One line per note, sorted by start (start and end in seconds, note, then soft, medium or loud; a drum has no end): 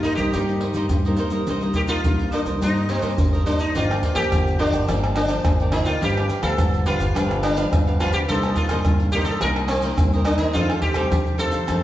0.00 0.31 G2 medium
0.00 0.16 G3 medium
0.00 0.16 A#3 medium
0.00 0.16 D#4 medium
0.00 0.15 D#4 medium
0.04 0.18 D#4 medium
0.04 0.18 A#4 medium
0.04 0.17 C5 medium
0.04 0.16 D#5 medium
0.04 pandeiro medium
0.15 0.31 C2 medium
0.15 0.28 G3 medium
0.15 0.29 A#3 medium
0.15 0.29 D#4 medium
0.15 1.13 G4 medium
0.15 0.33 C5 soft
0.15 0.32 D#5 medium
0.15 pandeiro medium
0.15 shaker medium
0.19 0.33 A#4 soft
0.33 0.71 G2 loud
0.33 0.88 C3 medium
0.33 0.61 G3 soft
0.33 0.61 A#3 medium
0.33 0.61 D#4 medium
0.33 0.62 A#4 medium
0.33 0.62 C5 medium
0.33 0.62 D#5 medium
0.33 pandeiro medium
0.33 shaker medium
0.33 surdo medium
0.49 pandeiro soft
0.49 shaker soft
0.61 0.75 D#4 soft
0.61 0.75 A#4 soft
0.61 0.76 C5 soft
0.61 0.76 D#5 soft
0.61 pandeiro medium
0.74 0.87 G2 medium
0.74 0.99 G3 medium
0.74 1.00 A#3 medium
0.74 1.00 D#4 medium
0.74 0.85 D#4 medium
0.74 0.86 A#4 medium
0.74 0.86 C5 medium
0.74 0.86 D#5 medium
0.74 pandeiro medium
0.74 shaker medium
0.89 1.45 G2 medium
0.89 1.15 G2 loud
0.89 pandeiro medium
0.89 shaker medium
0.89 surdo medium
1.05 1.29 G3 medium
1.05 1.30 A#3 medium
1.05 1.30 D#4 medium
1.05 1.17 A#4 soft
1.05 1.18 C5 soft
1.05 1.19 D#5 soft
1.05 pandeiro soft
1.05 shaker soft
1.17 1.32 D#4 medium
1.17 1.32 A#4 medium
1.17 1.32 C5 medium
1.17 1.31 D#5 medium
1.17 pandeiro medium
1.17 shaker medium
1.30 1.42 G3 medium
1.30 1.42 A#3 medium
1.30 1.42 D#4 medium
1.30 1.47 A#4 soft
1.30 1.47 C5 soft
1.30 1.46 D#5 soft
1.30 pandeiro soft
1.30 shaker medium
1.47 1.96 C2 medium
1.47 2.01 C3 soft
1.47 1.61 D#4 medium
1.47 1.62 A#4 medium
1.47 1.62 C5 medium
1.47 1.61 D#5 medium
1.47 pandeiro medium
1.47 shaker medium
1.47 surdo soft
1.61 2.00 G3 medium
1.61 2.00 A#3 medium
1.61 2.01 D#4 medium
1.61 1.75 A#4 soft
1.61 1.75 C5 soft
1.61 1.75 D#5 soft
1.61 pandeiro soft
1.61 shaker soft
1.74 1.87 D#4 soft
1.74 1.81 G4 medium
1.74 1.88 A#4 medium
1.74 1.88 C5 medium
1.74 1.89 D#5 medium
1.74 pandeiro medium
1.74 shaker medium
1.74 surdo medium
1.88 1.98 D#4 medium
1.88 2.33 F4 medium
1.88 1.99 A#4 medium
1.88 1.99 C5 medium
1.88 1.99 D#5 medium
1.88 pandeiro medium
1.88 shaker medium
2.04 2.29 C2 loud
2.04 2.58 G2 soft
2.04 2.57 G3 soft
2.04 2.57 A#3 medium
2.04 2.57 D#4 medium
2.04 pandeiro medium
2.04 shaker medium
2.04 surdo medium
2.19 pandeiro soft
2.19 shaker soft
2.32 2.40 D4 medium
2.32 2.46 D#4 medium
2.32 2.47 A#4 medium
2.32 2.45 C5 medium
2.32 2.44 D#5 medium
2.32 pandeiro medium
2.32 shaker medium
2.45 2.58 C2 medium
2.45 2.60 A#4 soft
2.45 2.60 C5 soft
2.45 2.60 D#5 soft
2.45 pandeiro medium
2.45 shaker medium
2.60 2.98 G2 medium
2.60 3.15 C3 medium
2.60 2.85 G3 medium
2.60 2.85 A#3 soft
2.60 2.87 D#4 medium
2.60 2.85 D#4 medium
2.60 3.01 D#4 medium
2.60 2.88 A#4 medium
2.60 2.88 C5 medium
2.60 2.89 D#5 medium
2.60 pandeiro medium
2.60 shaker medium
2.60 surdo medium
2.77 pandeiro soft
2.77 shaker soft
2.88 3.25 G3 medium
2.88 3.26 A#3 soft
2.88 3.42 C4 medium
2.88 3.01 D#4 soft
2.88 3.26 D#4 medium
2.88 3.01 A#4 soft
2.88 3.02 C5 medium
2.88 3.02 D#5 medium
2.88 pandeiro medium
2.88 shaker medium
3.01 3.15 G2 medium
3.01 3.15 D4 medium
3.01 3.12 D#4 medium
3.01 3.12 A#4 medium
3.01 3.13 C5 medium
3.01 3.13 D#5 medium
3.01 pandeiro medium
3.01 shaker medium
3.18 3.42 G#1 medium
3.18 3.72 G2 medium
3.18 pandeiro medium
3.18 shaker medium
3.18 surdo loud
3.33 3.45 A#4 soft
3.33 3.46 C5 soft
3.33 3.46 D#5 soft
3.33 pandeiro soft
3.33 shaker soft
3.45 3.64 G3 soft
3.45 3.64 A#3 medium
3.45 3.61 D4 medium
3.45 3.64 D#4 medium
3.45 3.59 D#4 medium
3.45 3.60 A#4 medium
3.45 3.60 C5 medium
3.45 3.58 D#5 medium
3.45 pandeiro medium
3.45 shaker medium
3.59 3.73 D#4 medium
3.59 3.74 A#4 soft
3.59 3.74 C5 soft
3.59 3.73 D#5 soft
3.59 pandeiro soft
3.59 shaker medium
3.74 3.99 G1 loud
3.74 4.28 G2 soft
3.74 4.13 F3 medium
3.74 4.13 A#3 medium
3.74 4.13 D4 medium
3.74 3.88 F4 medium
3.74 4.15 F4 medium
3.74 3.88 A#4 medium
3.74 3.89 D5 medium
3.74 3.89 G5 medium
3.74 pandeiro medium
3.74 shaker medium
3.74 surdo soft
3.90 4.03 A#4 soft
3.90 4.03 D5 soft
3.90 4.03 G5 medium
3.90 pandeiro soft
3.90 tamborim medium
3.90 shaker soft
4.03 4.14 F4 soft
4.03 4.15 A#4 soft
4.03 4.16 D5 medium
4.03 4.16 G5 medium
4.03 pandeiro medium
4.03 surdo medium
4.15 4.28 D2 medium
4.15 4.54 F3 medium
4.15 4.54 A#3 medium
4.15 4.54 D4 medium
4.15 4.26 F4 medium
4.15 4.60 G4 medium
4.15 4.26 A#4 medium
4.15 4.26 D5 medium
4.15 4.26 G5 medium
4.15 pandeiro medium
4.15 tamborim medium
4.15 shaker medium
4.31 4.68 G1 medium
4.31 4.85 D3 medium
4.31 pandeiro medium
4.31 tamborim medium
4.31 shaker medium
4.31 surdo medium
4.47 pandeiro soft
4.47 shaker soft
4.58 4.76 F3 medium
4.58 4.76 D4 medium
4.58 5.15 D4 medium
4.58 4.73 F4 medium
4.58 4.73 A#4 medium
4.58 4.73 D5 medium
4.58 4.71 G5 medium
4.58 pandeiro medium
4.72 4.85 G1 medium
4.72 4.87 A#4 soft
4.72 4.87 D5 soft
4.72 4.86 G5 soft
4.72 pandeiro medium
4.72 shaker medium
4.88 5.37 G1 medium
4.88 5.42 G2 medium
4.88 5.26 F3 medium
4.88 5.26 A#3 medium
4.88 5.26 D4 medium
4.88 5.15 F4 medium
4.88 5.15 A#4 medium
4.88 5.16 D5 medium
4.88 5.17 G5 medium
4.88 pandeiro medium
4.88 tamborim medium
4.88 shaker medium
4.88 surdo medium
5.04 pandeiro soft
5.04 tamborim medium
5.04 shaker soft
5.16 5.72 D4 medium
5.16 5.28 F4 soft
5.16 5.29 A#4 soft
5.16 5.29 D5 soft
5.16 5.29 G5 medium
5.16 pandeiro medium
5.16 tamborim medium
5.16 shaker medium
5.28 5.67 F3 medium
5.28 5.67 A#3 medium
5.28 5.68 D4 medium
5.28 5.39 F4 medium
5.28 5.39 A#4 medium
5.28 5.39 D5 medium
5.28 5.40 G5 medium
5.28 pandeiro medium
5.28 shaker medium
5.45 5.81 G1 loud
5.45 5.99 D3 soft
5.45 pandeiro medium
5.45 tamborim medium
5.45 shaker medium
5.45 surdo loud
5.60 5.72 A#4 soft
5.60 5.73 D5 soft
5.60 5.73 G5 soft
5.60 pandeiro soft
5.60 shaker soft
5.72 5.90 F3 medium
5.72 5.90 A#3 medium
5.72 5.90 D4 medium
5.72 5.87 D#4 medium
5.72 5.86 F4 medium
5.72 5.86 A#4 medium
5.72 5.86 D5 medium
5.72 5.85 G5 medium
5.72 pandeiro medium
5.72 tamborim medium
5.85 5.99 D2 medium
5.85 6.00 F4 medium
5.85 6.01 A#4 soft
5.85 6.01 D5 soft
5.85 6.00 G5 soft
5.85 pandeiro medium
5.85 shaker medium
6.01 6.26 G1 loud
6.01 6.55 G2 medium
6.01 6.28 F3 soft
6.01 6.28 B3 soft
6.01 6.14 D4 medium
6.01 6.28 D4 medium
6.01 6.15 G4 medium
6.01 6.42 G4 medium
6.01 6.15 B4 medium
6.01 6.16 F5 medium
6.01 pandeiro medium
6.01 shaker medium
6.01 surdo medium
6.17 6.29 G4 soft
6.17 6.29 B4 soft
6.17 6.30 F5 medium
6.17 pandeiro soft
6.17 tamborim medium
6.17 shaker soft
6.29 6.41 D4 soft
6.29 6.41 G4 soft
6.29 6.42 B4 soft
6.29 6.42 F5 medium
6.29 pandeiro medium
6.29 shaker medium
6.42 6.55 D2 loud
6.42 6.81 F3 medium
6.42 6.82 B3 medium
6.42 6.52 D4 medium
6.42 6.82 D4 medium
6.42 6.53 G4 medium
6.42 6.83 A4 medium
6.42 6.53 B4 medium
6.42 6.53 F5 medium
6.42 pandeiro medium
6.42 tamborim medium
6.42 shaker medium
6.58 6.95 G1 loud
6.58 7.12 D3 medium
6.58 pandeiro medium
6.58 tamborim medium
6.58 shaker medium
6.58 surdo loud
6.74 pandeiro soft
6.74 shaker soft
6.86 7.03 F3 soft
6.86 7.03 B3 medium
6.86 6.99 D4 medium
6.86 7.03 D4 medium
6.86 7.39 F4 loud
6.86 6.99 G4 medium
6.86 6.98 B4 medium
6.86 6.98 F5 medium
6.86 pandeiro medium
6.86 shaker medium
6.99 7.12 G1 medium
6.99 7.14 G4 soft
6.99 7.13 B4 soft
6.99 7.13 F5 soft
6.99 pandeiro medium
6.99 shaker medium
7.14 7.64 G1 medium
7.14 7.69 G2 medium
7.14 7.54 F3 medium
7.14 7.54 B3 medium
7.14 7.41 D4 medium
7.14 7.54 D4 medium
7.14 7.42 G4 medium
7.14 7.43 B4 medium
7.14 7.43 F5 medium
7.14 pandeiro medium
7.14 tamborim medium
7.14 shaker medium
7.14 surdo medium
7.31 pandeiro soft
7.31 tamborim medium
7.31 shaker soft
7.42 7.55 D4 medium
7.42 8.02 D4 loud
7.42 7.55 G4 soft
7.42 7.56 B4 medium
7.42 7.57 F5 medium
7.42 pandeiro medium
7.42 tamborim medium
7.42 shaker medium
7.56 7.95 F3 medium
7.56 7.95 B3 medium
7.56 7.66 D4 medium
7.56 7.95 D4 medium
7.56 7.66 G4 medium
7.56 7.66 B4 medium
7.56 7.67 F5 medium
7.56 pandeiro medium
7.56 shaker medium
7.72 8.08 G1 medium
7.72 8.26 D3 medium
7.72 pandeiro medium
7.72 tamborim medium
7.72 shaker medium
7.72 surdo loud
7.87 8.01 G4 soft
7.87 8.00 B4 soft
7.87 8.00 F5 medium
7.87 pandeiro soft
7.87 shaker soft
8.00 8.24 F3 medium
8.00 8.24 B3 medium
8.00 8.24 D4 medium
8.00 8.14 D4 medium
8.00 8.13 F4 medium
8.00 8.14 G4 medium
8.00 8.14 B4 medium
8.00 8.13 F5 medium
8.00 pandeiro medium
8.00 tamborim medium
8.12 8.25 D2 medium
8.12 8.18 G4 medium
8.12 8.28 G4 soft
8.12 8.28 B4 soft
8.12 8.27 F5 medium
8.12 pandeiro soft
8.12 shaker medium
8.28 8.53 C2 loud
8.28 8.83 C3 soft
8.28 8.67 D#3 medium
8.28 8.67 A#3 soft
8.28 8.67 D4 medium
8.28 8.42 D#4 medium
8.28 8.55 A4 loud
8.28 8.43 A#4 medium
8.28 8.43 C5 medium
8.28 8.43 D#5 medium
8.28 pandeiro medium
8.28 shaker medium
8.28 surdo medium
8.43 8.56 A#4 soft
8.43 8.57 C5 soft
8.43 8.57 D#5 medium
8.43 pandeiro soft
8.43 tamborim medium
8.43 shaker soft
8.56 8.69 D#4 soft
8.56 9.09 F4 medium
8.56 8.69 A#4 medium
8.56 8.70 C5 medium
8.56 8.70 D#5 medium
8.56 pandeiro medium
8.56 shaker medium
8.56 surdo medium
8.69 8.82 G2 medium
8.69 9.09 D#3 medium
8.69 9.09 A#3 medium
8.69 9.09 D4 medium
8.69 8.80 D#4 medium
8.69 8.80 A#4 medium
8.69 8.80 C5 medium
8.69 8.80 D#5 medium
8.69 pandeiro medium
8.69 tamborim medium
8.69 shaker medium
8.85 9.22 C2 loud
8.85 9.40 G2 medium
8.85 pandeiro medium
8.85 tamborim medium
8.85 shaker medium
8.85 surdo loud
9.00 pandeiro soft
9.00 shaker soft
9.12 9.37 D#3 soft
9.12 9.38 A#3 soft
9.12 9.38 D4 medium
9.12 9.27 D#4 medium
9.12 9.24 G4 loud
9.12 9.28 A#4 medium
9.12 pandeiro medium
9.12 shaker medium
9.16 9.27 C5 medium
9.16 9.26 D#5 medium
9.25 9.39 C2 medium
9.25 9.39 A4 medium
9.25 9.41 C5 soft
9.25 9.41 D#5 medium
9.25 pandeiro medium
9.25 shaker medium
9.30 9.42 A#4 soft
9.41 9.90 C2 medium
9.41 9.97 C3 medium
9.41 9.69 D#3 medium
9.41 9.69 A#3 medium
9.41 9.70 D4 medium
9.41 9.69 D#4 medium
9.41 9.49 A#4 loud
9.41 9.70 A#4 medium
9.41 9.70 C5 medium
9.41 9.71 D#5 medium
9.41 pandeiro medium
9.41 tamborim medium
9.41 shaker medium
9.41 surdo medium
9.56 pandeiro soft
9.56 tamborim medium
9.56 shaker soft
9.68 10.22 C4 medium
9.68 9.82 D#4 medium
9.68 9.83 A#4 medium
9.68 9.83 C5 soft
9.68 pandeiro medium
9.68 tamborim medium
9.68 shaker medium
9.72 9.84 D#5 medium
9.82 10.22 D#3 medium
9.82 10.22 A#3 medium
9.82 10.22 D4 medium
9.82 9.93 D#4 medium
9.82 9.93 A#4 medium
9.82 9.94 C5 medium
9.82 9.94 D#5 medium
9.82 pandeiro medium
9.82 shaker medium
9.98 10.35 C2 medium
9.98 10.52 G2 medium
9.98 pandeiro medium
9.98 tamborim medium
9.98 shaker medium
9.98 surdo loud
10.13 10.25 A#4 soft
10.13 10.26 C5 soft
10.13 10.26 D#5 soft
10.13 pandeiro soft
10.13 shaker soft
10.24 10.50 D#3 medium
10.24 10.51 A#3 medium
10.24 10.37 D4 medium
10.24 10.51 D4 medium
10.24 10.40 D#4 medium
10.24 10.40 A#4 medium
10.24 10.39 C5 medium
10.24 10.38 D#5 medium
10.24 pandeiro medium
10.24 tamborim medium
10.24 shaker medium
10.38 10.52 D#2 medium
10.38 10.53 D#4 medium
10.38 10.54 A#4 soft
10.38 10.54 C5 soft
10.38 10.53 D#5 medium
10.38 pandeiro soft
10.38 shaker medium
10.53 11.09 F2 medium
10.53 10.80 F2 loud
10.53 10.82 D#3 medium
10.53 10.82 A3 soft
10.53 10.82 C4 medium
10.53 10.69 D#4 medium
10.53 10.81 F4 medium
10.53 10.69 A4 medium
10.53 10.69 C5 medium
10.53 pandeiro medium
10.53 shaker medium
10.53 surdo medium
10.57 10.68 F5 medium
10.70 10.82 A4 soft
10.70 10.82 C5 soft
10.70 10.83 F5 soft
10.70 pandeiro soft
10.70 tamborim medium
10.70 shaker soft
10.82 10.94 D#4 medium
10.82 11.39 G4 medium
10.82 10.94 A4 medium
10.82 10.94 C5 soft
10.82 10.95 F5 soft
10.82 pandeiro medium
10.82 surdo medium
10.94 11.08 C2 medium
10.94 11.35 D#3 medium
10.94 11.35 A3 medium
10.94 11.35 C4 medium
10.94 11.06 D#4 medium
10.94 11.06 A4 medium
10.94 11.06 C5 medium
10.94 11.06 F5 medium
10.94 pandeiro medium
10.94 tamborim medium
10.94 shaker medium
11.11 11.48 F2 medium
11.11 11.66 C3 medium
11.11 pandeiro medium
11.11 tamborim medium
11.11 shaker medium
11.11 surdo medium
11.27 pandeiro soft
11.27 shaker soft
11.38 11.63 D#3 medium
11.38 11.63 A3 medium
11.38 11.64 C4 medium
11.38 11.52 D#4 medium
11.38 11.53 A4 medium
11.38 11.83 A4 loud
11.38 11.52 C5 medium
11.38 11.51 F5 medium
11.38 pandeiro medium
11.38 shaker medium
11.52 11.66 F2 medium
11.52 11.67 A4 soft
11.52 11.67 C5 soft
11.52 11.66 F5 soft
11.52 pandeiro medium
11.52 shaker medium
11.67 11.83 F2 medium
11.67 11.83 F2 loud
11.67 11.83 D#3 medium
11.67 11.83 A3 medium
11.67 11.83 C4 medium
11.67 11.83 D#4 medium
11.67 11.83 A4 medium
11.67 11.83 C5 medium
11.67 11.83 F5 medium
11.67 pandeiro medium
11.67 tamborim medium
11.67 shaker medium
11.67 surdo medium